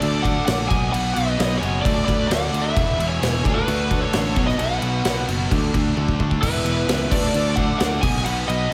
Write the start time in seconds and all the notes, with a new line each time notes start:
Already playing: A4 D5
0.01 D2 D3 A3 D4, crash
0.22 D3 A3 D4 D5 F#5, kick, crash
0.45 A#1 D3 A3 D4 D5 F#5, snare, crash
0.68 B1 B2 F#3 B3 D#5 G#5, kick, crash
0.92 B1 B2 F#3 B3 B4 F#5, crash
1.14 B1 B2 F#3 B3 B4 D#5, crash
1.37 B1 B2 F#3 B3, snare, crash
1.59 F#1 B2 F#3 B3 G#4 C#5
1.63 crash
1.81 D3 A3 D4 A4 D5
1.85 D2, kick, crash
2.05 D2 D3 A3 D4 B4 D5, kick, crash
2.27 D2 D3 A3 D4 D5 F#5, crash
2.32 snare
2.53 D2 D3 A3 D4, crash
2.61 B4 E5
2.75 E1 E2 B2 E3, kick, crash
2.98 E1 E2 B2 E3, crash
3.08 G#4 C#5
3.20 E1 E2 B2 E3, snare, crash
3.44 D2 D3 A3 D4, kick, crash
3.54 F#4 B4
3.67 D2 D3 A3 D4, crash
3.90 D3 A3 D4, kick, crash
4.00 A4 C#5
4.13 A1 D3 A3 D4, snare, crash
4.36 B1 B2 F#3 B3, kick, crash
4.46 B4 D#5, snare
4.57 B1 B2 F#3 B3 B4 F#5, crash
4.82 B1 B2 F#3 B3, crash
5.05 B1 B2 F#3 B3, snare, crash
5.28 F#1 B2 F#3 B3, crash
5.51 D2 D3 A3 D4, kick, crash
5.74 D2 D3 A3 D4, kick, crash
5.97 D2 D3 A3 D4, high tom
6.08 kick
6.20 D2 D3 A3 D4, kick
6.31 kick
6.42 E1 E2 B2 E3 E4 B4, kick, crash
6.65 E1 E2 B2 E3, crash
6.88 C#2 E2 B2 E3, snare, crash
7.11 D2 D3 A3 D4 A4 D5, kick, crash
7.34 D2 D3 A3 D4, crash
7.56 D3 A3 D4 D5 F#5, kick, crash
7.79 D2 D3 A3 D4 D5 F#5, snare, crash
8.01 B1 B2 F#3 B3 D#5 G#5, kick, crash
8.15 snare
8.24 B1 B2 F#3 B3 B4 F#5, crash
8.47 B1 B2 F#3 B3 B4 D#5, crash